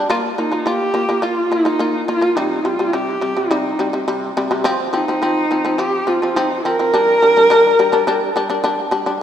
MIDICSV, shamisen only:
0, 0, Header, 1, 2, 480
1, 0, Start_track
1, 0, Tempo, 570342
1, 71, Time_signature, 4, 2, 24, 8
1, 7763, End_track
2, 0, Start_track
2, 0, Title_t, "Shamisen"
2, 0, Program_c, 0, 106
2, 81, Note_on_c, 0, 58, 110
2, 88, Note_on_c, 0, 65, 111
2, 267, Note_off_c, 0, 58, 0
2, 270, Note_off_c, 0, 65, 0
2, 321, Note_on_c, 0, 58, 68
2, 326, Note_on_c, 0, 65, 77
2, 411, Note_off_c, 0, 58, 0
2, 413, Note_off_c, 0, 65, 0
2, 434, Note_on_c, 0, 58, 58
2, 440, Note_on_c, 0, 65, 70
2, 527, Note_off_c, 0, 58, 0
2, 530, Note_off_c, 0, 65, 0
2, 553, Note_on_c, 0, 58, 75
2, 561, Note_on_c, 0, 65, 91
2, 742, Note_off_c, 0, 58, 0
2, 746, Note_off_c, 0, 65, 0
2, 789, Note_on_c, 0, 58, 68
2, 795, Note_on_c, 0, 65, 76
2, 884, Note_off_c, 0, 58, 0
2, 887, Note_off_c, 0, 65, 0
2, 915, Note_on_c, 0, 58, 68
2, 921, Note_on_c, 0, 65, 76
2, 1006, Note_off_c, 0, 58, 0
2, 1010, Note_off_c, 0, 65, 0
2, 1028, Note_on_c, 0, 58, 84
2, 1035, Note_on_c, 0, 65, 78
2, 1219, Note_off_c, 0, 58, 0
2, 1220, Note_off_c, 0, 65, 0
2, 1276, Note_on_c, 0, 58, 65
2, 1282, Note_on_c, 0, 65, 79
2, 1366, Note_off_c, 0, 58, 0
2, 1369, Note_off_c, 0, 65, 0
2, 1389, Note_on_c, 0, 58, 66
2, 1397, Note_on_c, 0, 65, 76
2, 1483, Note_off_c, 0, 58, 0
2, 1487, Note_off_c, 0, 65, 0
2, 1510, Note_on_c, 0, 58, 77
2, 1518, Note_on_c, 0, 65, 94
2, 1698, Note_off_c, 0, 58, 0
2, 1702, Note_off_c, 0, 65, 0
2, 1752, Note_on_c, 0, 58, 76
2, 1758, Note_on_c, 0, 65, 82
2, 1844, Note_off_c, 0, 58, 0
2, 1846, Note_off_c, 0, 65, 0
2, 1863, Note_on_c, 0, 58, 66
2, 1871, Note_on_c, 0, 65, 72
2, 1959, Note_off_c, 0, 58, 0
2, 1963, Note_off_c, 0, 65, 0
2, 1992, Note_on_c, 0, 48, 84
2, 1997, Note_on_c, 0, 55, 97
2, 2179, Note_off_c, 0, 48, 0
2, 2182, Note_off_c, 0, 55, 0
2, 2230, Note_on_c, 0, 48, 69
2, 2236, Note_on_c, 0, 55, 64
2, 2323, Note_off_c, 0, 48, 0
2, 2324, Note_off_c, 0, 55, 0
2, 2350, Note_on_c, 0, 48, 64
2, 2357, Note_on_c, 0, 55, 66
2, 2442, Note_off_c, 0, 48, 0
2, 2446, Note_off_c, 0, 55, 0
2, 2469, Note_on_c, 0, 48, 86
2, 2475, Note_on_c, 0, 55, 83
2, 2657, Note_off_c, 0, 48, 0
2, 2660, Note_off_c, 0, 55, 0
2, 2705, Note_on_c, 0, 48, 66
2, 2711, Note_on_c, 0, 55, 82
2, 2800, Note_off_c, 0, 48, 0
2, 2803, Note_off_c, 0, 55, 0
2, 2833, Note_on_c, 0, 48, 70
2, 2838, Note_on_c, 0, 55, 61
2, 2924, Note_off_c, 0, 48, 0
2, 2925, Note_off_c, 0, 55, 0
2, 2951, Note_on_c, 0, 48, 88
2, 2956, Note_on_c, 0, 55, 100
2, 3138, Note_off_c, 0, 48, 0
2, 3141, Note_off_c, 0, 55, 0
2, 3191, Note_on_c, 0, 48, 74
2, 3195, Note_on_c, 0, 55, 81
2, 3282, Note_off_c, 0, 48, 0
2, 3285, Note_off_c, 0, 55, 0
2, 3309, Note_on_c, 0, 48, 73
2, 3315, Note_on_c, 0, 55, 73
2, 3402, Note_off_c, 0, 48, 0
2, 3404, Note_off_c, 0, 55, 0
2, 3431, Note_on_c, 0, 48, 80
2, 3435, Note_on_c, 0, 55, 92
2, 3619, Note_off_c, 0, 48, 0
2, 3621, Note_off_c, 0, 55, 0
2, 3677, Note_on_c, 0, 48, 92
2, 3681, Note_on_c, 0, 55, 92
2, 3766, Note_off_c, 0, 48, 0
2, 3768, Note_off_c, 0, 55, 0
2, 3794, Note_on_c, 0, 48, 88
2, 3800, Note_on_c, 0, 55, 83
2, 3885, Note_off_c, 0, 48, 0
2, 3886, Note_off_c, 0, 55, 0
2, 3907, Note_on_c, 0, 53, 115
2, 3914, Note_on_c, 0, 60, 122
2, 4097, Note_off_c, 0, 53, 0
2, 4100, Note_off_c, 0, 60, 0
2, 4148, Note_on_c, 0, 53, 69
2, 4154, Note_on_c, 0, 60, 82
2, 4242, Note_off_c, 0, 53, 0
2, 4245, Note_off_c, 0, 60, 0
2, 4277, Note_on_c, 0, 53, 67
2, 4284, Note_on_c, 0, 60, 64
2, 4367, Note_off_c, 0, 53, 0
2, 4368, Note_off_c, 0, 60, 0
2, 4390, Note_on_c, 0, 53, 81
2, 4398, Note_on_c, 0, 60, 91
2, 4579, Note_off_c, 0, 53, 0
2, 4583, Note_off_c, 0, 60, 0
2, 4635, Note_on_c, 0, 53, 62
2, 4642, Note_on_c, 0, 60, 69
2, 4727, Note_off_c, 0, 53, 0
2, 4728, Note_off_c, 0, 60, 0
2, 4752, Note_on_c, 0, 53, 67
2, 4759, Note_on_c, 0, 60, 71
2, 4844, Note_off_c, 0, 53, 0
2, 4848, Note_off_c, 0, 60, 0
2, 4867, Note_on_c, 0, 53, 84
2, 4872, Note_on_c, 0, 60, 92
2, 5058, Note_off_c, 0, 53, 0
2, 5061, Note_off_c, 0, 60, 0
2, 5108, Note_on_c, 0, 53, 76
2, 5114, Note_on_c, 0, 60, 84
2, 5203, Note_off_c, 0, 53, 0
2, 5206, Note_off_c, 0, 60, 0
2, 5236, Note_on_c, 0, 53, 65
2, 5246, Note_on_c, 0, 60, 79
2, 5327, Note_off_c, 0, 53, 0
2, 5332, Note_off_c, 0, 60, 0
2, 5356, Note_on_c, 0, 53, 85
2, 5360, Note_on_c, 0, 60, 91
2, 5543, Note_off_c, 0, 53, 0
2, 5546, Note_off_c, 0, 60, 0
2, 5598, Note_on_c, 0, 53, 77
2, 5603, Note_on_c, 0, 60, 81
2, 5689, Note_off_c, 0, 53, 0
2, 5691, Note_off_c, 0, 60, 0
2, 5718, Note_on_c, 0, 53, 71
2, 5723, Note_on_c, 0, 60, 78
2, 5809, Note_off_c, 0, 53, 0
2, 5812, Note_off_c, 0, 60, 0
2, 5837, Note_on_c, 0, 55, 88
2, 5843, Note_on_c, 0, 62, 98
2, 6025, Note_off_c, 0, 55, 0
2, 6028, Note_off_c, 0, 62, 0
2, 6080, Note_on_c, 0, 55, 68
2, 6087, Note_on_c, 0, 62, 76
2, 6170, Note_off_c, 0, 55, 0
2, 6174, Note_off_c, 0, 62, 0
2, 6199, Note_on_c, 0, 55, 67
2, 6205, Note_on_c, 0, 62, 82
2, 6290, Note_off_c, 0, 55, 0
2, 6293, Note_off_c, 0, 62, 0
2, 6313, Note_on_c, 0, 55, 94
2, 6322, Note_on_c, 0, 62, 107
2, 6504, Note_off_c, 0, 55, 0
2, 6508, Note_off_c, 0, 62, 0
2, 6558, Note_on_c, 0, 55, 78
2, 6562, Note_on_c, 0, 62, 86
2, 6650, Note_off_c, 0, 55, 0
2, 6652, Note_off_c, 0, 62, 0
2, 6668, Note_on_c, 0, 55, 74
2, 6674, Note_on_c, 0, 62, 87
2, 6766, Note_off_c, 0, 55, 0
2, 6768, Note_off_c, 0, 62, 0
2, 6793, Note_on_c, 0, 55, 97
2, 6799, Note_on_c, 0, 62, 102
2, 6985, Note_off_c, 0, 55, 0
2, 6986, Note_off_c, 0, 62, 0
2, 7034, Note_on_c, 0, 55, 83
2, 7041, Note_on_c, 0, 62, 94
2, 7129, Note_off_c, 0, 55, 0
2, 7133, Note_off_c, 0, 62, 0
2, 7150, Note_on_c, 0, 55, 82
2, 7156, Note_on_c, 0, 62, 81
2, 7247, Note_off_c, 0, 55, 0
2, 7250, Note_off_c, 0, 62, 0
2, 7268, Note_on_c, 0, 55, 96
2, 7274, Note_on_c, 0, 62, 98
2, 7464, Note_off_c, 0, 55, 0
2, 7465, Note_off_c, 0, 62, 0
2, 7501, Note_on_c, 0, 55, 82
2, 7508, Note_on_c, 0, 62, 91
2, 7604, Note_off_c, 0, 55, 0
2, 7607, Note_off_c, 0, 62, 0
2, 7627, Note_on_c, 0, 55, 80
2, 7633, Note_on_c, 0, 62, 84
2, 7727, Note_off_c, 0, 55, 0
2, 7730, Note_off_c, 0, 62, 0
2, 7763, End_track
0, 0, End_of_file